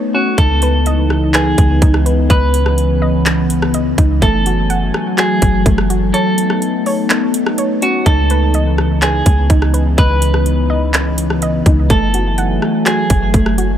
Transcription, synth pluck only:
Already playing: C#5
0.14 C#4
0.38 D#4
0.63 B4
0.87 D#5
1.34 B4
1.82 D#4
2.06 B4
2.30 D#5
3.02 D#5
3.74 D#5
3.98 D#4
4.22 A3
4.46 F#4
4.70 F#5
5.17 F#4
5.66 A3
5.90 F#4
6.14 C#5
6.86 C#5
7.58 C#5
7.82 C#4
8.06 D#4
8.31 B4
8.55 D#5
9.02 B4
9.50 D#4
9.74 B4
9.98 D#5
10.70 D#5
11.42 D#5
11.66 D#4
11.90 A3
12.15 F#4
12.38 F#5
12.86 F#4
13.34 A3
13.58 F#4

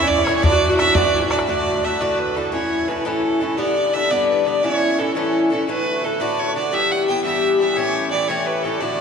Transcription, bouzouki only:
0.00 E3 C#4 E4
0.18 E3 C#4 E4
0.26 A2 E3 C#4 E4
0.42 A2 E3 D4 F#4
0.52 E3 D4 F#4
0.69 E3 D4 F#4
0.78 A2 E3 D4 F#4
0.95 A2 E3 D4 F#4
1.04 E3 D4 F#4
1.21 E3 D4 F#4
1.30 A2 E3 D4 F#4
1.47 A2 D3 A3 F#4
1.83 A2 D3 A3 F#4
1.99 A2 D3 A3 F#4
2.35 A2 D3 A3 F#4
2.52 A2 E3 C#4 E4
2.88 A2 E3 C#4 E4
3.05 A2 E3 C#4 E4
3.41 A2 E3 C#4 E4
3.57 G2 D3 B3 D4
3.93 G2 D3 B3 D4
4.10 G2 D3 B3 D4
4.45 G2 D3 B3 D4
4.63 A2 E3 C#4 E4
4.98 A2 E3 C#4 E4
5.15 A2 E3 C#4 E4
5.50 A2 E3 C#4 E4
5.68 A2 D3 A3 F#4
6.03 A2 D3 A3 F#4
6.20 A2 D3 A3 F#4
6.55 A2 D3 A3 F#4
6.72 G2 E3 B3 G4
7.08 G2 E3 B3 G4
7.24 G2 E3 B3 G4
7.59 G2 E3 B3 G4
7.77 A2 E3 C#4 G4
8.12 A2 E3 C#4 G4
8.29 A2 E3 C#4 G4
8.64 A2 E3 C#4 G4
8.81 A2 D3 A3 F#4

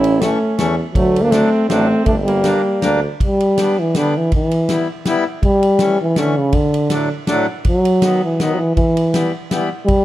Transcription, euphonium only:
Already playing: C#4
0.20 A3
0.95 F#3
1.22 A#3
1.32 A3
1.69 A3
2.05 A3
2.24 G3
3.24 G3
3.80 E3
3.96 D3
4.17 E3
4.34 E3
5.45 G3
6.01 E3
6.18 D3
6.38 C#3
6.54 D3
7.68 F#3
8.24 E3
8.41 D#3
8.54 F#3
8.58 E3
8.75 E3
9.86 G3

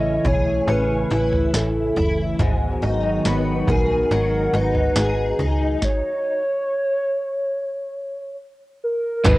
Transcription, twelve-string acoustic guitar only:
Already playing: A3 C#4 E4
0.25 G#4
0.68 C#4
1.10 E4
1.96 E4
2.39 G#2
2.82 D#4
3.25 B3
3.68 G#4
4.11 F#3
4.54 D#4
4.96 G#4
5.39 D#4
9.25 G#2

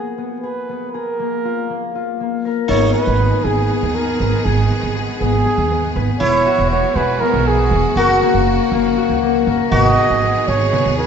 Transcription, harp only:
Already playing: B3 F#4 G#4
0.18 B3
0.43 G#4
0.69 B3
0.94 G#4
1.20 A#3
1.45 F4
1.70 A#3
1.95 F4
2.20 A#3
2.45 A#4
2.70 B3
2.95 G#4
3.20 B3
3.46 G#4
3.71 B3
3.95 G#4
4.21 B3
4.46 G#4
4.71 B3
4.96 G#4
5.21 B3
5.46 G#4
5.71 B3
5.96 B4
6.21 B3
6.46 F#4
6.72 B3
6.97 G#4
7.21 B3
7.47 G#4
7.72 B3
7.97 A#4
8.22 A#3
8.47 F#4
8.73 A#3
8.98 F#4
9.23 A#3
9.48 A#4
9.73 B3
9.99 G#4
10.23 B3
10.49 G#4
10.74 B3
10.99 G#4

